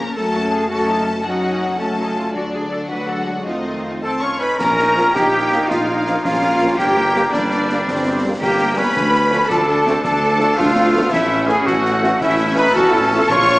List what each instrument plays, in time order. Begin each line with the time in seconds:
Already playing: french horn section A#3, cello section C#4, violin section A#4 A#5
0.14 double bass section F#1, viola section F#3 C#4, french horn section A3, violin section A4 A5, cello section A4
0.35 cello section F#4
0.52 cello section G#4
0.68 french horn section A3, viola section C#4, cello section F#4, violin section A4 A5
0.72 viola section F#3
0.89 cello section D#4
1.07 cello section C#4
1.25 french horn section F#3, viola section F#3 C#4, cello section D#4, violin section F#4 F#5
1.79 viola section F#3 C#4, french horn section A3, cello section C#4, violin section A4 A5
1.98 cello section D#4
2.17 cello section F4
2.34 double bass section D2, french horn section D3, viola section F#3 D4, violin section D4 D5, cello section F#4
2.54 cello section G#4
2.72 cello section A4
2.89 double bass section D2, viola section F#3 D4, french horn section F#3, violin section F#4 F#5, cello section B4
3.10 cello section A4
3.17 viola section G#3
3.29 cello section F#4
3.46 double bass section F2, french horn section D#3, viola section A3 C4, violin section D#4 D#5, cello section F4
4.03 cor anglais C4, viola section C4, trumpet A4, cello section A4, violin section A5, flute A5
4.19 viola section C#4, cor anglais F4, trumpet C#5, cello section C#5, violin section C#6, flute C#6
4.40 cor anglais C#4, viola section D#4, trumpet B4, cello section B4, violin section B5, flute B5
4.59 double bass section A#1, tuba A#1, cor anglais C#4, viola section C#4, trumpet A#4, cello section A#4, violin section A#5, flute A#5, concert bass drum, snare, crash
4.79 viola section D#4, snare
4.95 trombone section F3 A#3, french horn section C#4 A#4, viola section F4, snare
5.15 tuba A#1, double bass section A#1, cor anglais A#3, viola section D#4, trumpet G4, cello section G4, violin section G5, flute G5, concert bass drum, snare
5.50 trombone section F3 A#3, french horn section C#4 A#4, snare
5.68 double bass section A#1, tuba A#1, cor anglais A#3, trumpet F4, cello section F4, violin section F5, flute F5, concert bass drum, snare
6.07 trombone section F3 A#3, french horn section C#4 A#4, snare
6.23 double bass section A#1, tuba A#1, cor anglais A#3, viola section C#4, trumpet F4, cello section F4, violin section F5, flute F5, concert bass drum, snare
6.60 trombone section F3 A#3, french horn section C#4 A#4
6.77 tuba G1, double bass section G1, cor anglais A#3, viola section D4, cello section G4, trumpet G4, violin section G5, flute G5, concert bass drum, snare
6.97 viola section A#3
7.13 trombone section G3 A#3, viola section C4, french horn section D4 G4, snare
7.32 double bass section G1, tuba G1, cor anglais G3, viola section A#3, cello section D4, trumpet D4, violin section D5, flute D5, concert bass drum, snare
7.52 snare
7.66 french horn section D4 G4, snare
7.71 trombone section G3 A#3
7.85 tuba G1, double bass section G1, viola section C4, concert bass drum, snare
8.23 trombone section G3 A#3, french horn section D4 G4
8.40 double bass section G1, tuba G1, viola section A#3, cor anglais A#3, cello section G4, trumpet G4, violin section G5, flute G5, concert bass drum, snare
8.76 trombone section G3 A#3, cor anglais C#4, french horn section D4 G4, cello section B4, trumpet B4, violin section B5, flute B5
8.95 double bass section D2, tuba D2, viola section D3, concert bass drum, snare
9.15 snare
9.31 trombone section F3 A3, french horn section D4 A4, snare
9.48 double bass section D2, tuba D2, cor anglais D4, viola section F4, trumpet A4, cello section A4, violin section A5, flute A5, concert bass drum, snare
9.69 viola section D4
9.85 trombone section F3 A3, viola section C4, french horn section D4 A4, snare
10.02 double bass section D2, tuba D2, cor anglais D4, viola section D4, cello section A4, trumpet A4, violin section A5, flute A5, concert bass drum, snare
10.39 trombone section F3 A3, french horn section D4 A4, snare
10.57 double bass section D2, tuba D2, cor anglais A3, viola section D4, cello section F4, trumpet F4, violin section F5, flute F5, concert bass drum, snare
10.75 viola section C4
10.92 trombone section F3 A3, viola section B3, french horn section D4 A4
11.11 double bass section A1, tuba A1, cor anglais A3, viola section C#4, cello section E4, trumpet E4, violin section E5, flute E5, concert bass drum, snare
11.47 trombone section E3 A3, cor anglais B3, french horn section C#4 A4, cello section G#4, trumpet G#4, violin section G#5, flute G#5, snare
11.66 double bass section A1, tuba A1, cor anglais A3, trumpet F#4, cello section F#4, flute F#5, violin section F#5, concert bass drum, snare
11.86 snare
12.00 trombone section E3 A3, french horn section C#4 A4, snare
12.19 double bass section A1, tuba A1, cor anglais A3, viola section C#4, trumpet E4, cello section E4, flute E5, violin section E5, concert bass drum, snare
12.54 trombone section E3 A3, french horn section C#4 A4, cor anglais D#4, cello section B4, trumpet B4, violin section B5, flute B5
12.73 double bass section A1, tuba A1, cor anglais C#4, viola section F#4, cello section A4, trumpet A4, violin section A5, flute A5, concert bass drum, snare
12.92 viola section E4
13.11 trombone section E3 A3, french horn section C#4 A4, viola section F4
13.29 tuba A#1, double bass section A#1, timpani A#2, cor anglais F4, cello section C#5, trumpet C#5, violin section C#6, flute C#6, concert bass drum, snare, crash
13.49 snare